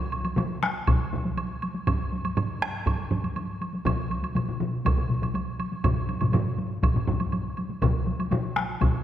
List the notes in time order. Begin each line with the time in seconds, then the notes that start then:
0.12 high woodblock
0.25 taiko high, high woodblock
0.38 taiko low-mid, taiko high, high woodblock
0.63 taiko rim, taiko high
0.87 taiko, taiko low-mid, taiko high, high woodblock
1.13 taiko low-mid, taiko high
1.25 taiko high
1.37 taiko high, high woodblock
1.62 taiko high, high woodblock
1.75 taiko high
1.87 taiko, taiko mid, taiko high, high woodblock
2.12 taiko high
2.25 taiko high, high woodblock
2.37 taiko mid, taiko high, high woodblock
2.62 taiko rim, taiko high
2.86 taiko, taiko mid, taiko high, high woodblock
3.11 taiko mid, taiko high
3.24 taiko high, high woodblock
3.36 taiko high, high woodblock
3.61 taiko high, high woodblock
3.73 taiko high
3.85 taiko, taiko low-mid, taiko high, high woodblock
4.10 taiko high, high woodblock
4.22 taiko high, high woodblock
4.35 taiko low-mid, taiko high, high woodblock
4.49 taiko low-mid
4.60 taiko low-mid, taiko high
4.85 taiko, taiko low-mid, taiko high, high woodblock
4.98 taiko low-mid
5.10 taiko low-mid, taiko high
5.22 taiko low-mid, taiko high, high woodblock
5.34 taiko high, high woodblock
5.59 taiko high, high woodblock
5.72 taiko high
5.84 taiko, taiko low-mid, taiko mid, taiko high, high woodblock
6.09 taiko high, high woodblock
6.21 taiko low-mid, taiko mid, taiko high, high woodblock
6.33 taiko low-mid, taiko mid, taiko high, high woodblock
6.58 taiko high
6.83 taiko, taiko low-mid, taiko mid, taiko high, high woodblock
6.96 taiko low-mid, taiko mid
7.07 taiko low-mid, taiko mid, taiko high
7.20 taiko high, high woodblock
7.32 taiko high, high woodblock
7.57 taiko high, high woodblock
7.70 taiko high
7.82 taiko, taiko low-mid, taiko high, high woodblock
8.07 taiko high
8.19 taiko high, high woodblock
8.31 taiko low-mid, taiko high, high woodblock
8.56 taiko rim, taiko high
8.81 taiko, taiko low-mid, taiko high, high woodblock